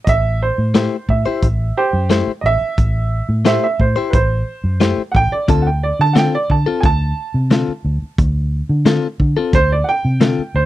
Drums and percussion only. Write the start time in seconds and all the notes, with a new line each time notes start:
0.07 kick, closed hi-hat
0.75 snare, closed hi-hat
1.09 kick
1.42 kick, closed hi-hat
2.10 snare, closed hi-hat
2.78 kick, closed hi-hat
3.46 snare, closed hi-hat
3.80 kick
4.13 kick, closed hi-hat
4.81 snare, closed hi-hat
5.15 kick
5.48 kick, closed hi-hat
6.16 snare, closed hi-hat
6.50 kick
6.83 kick, closed hi-hat
7.51 snare, closed hi-hat
8.18 kick, closed hi-hat
8.86 snare, closed hi-hat
9.20 kick
9.53 kick, closed hi-hat
10.21 snare, closed hi-hat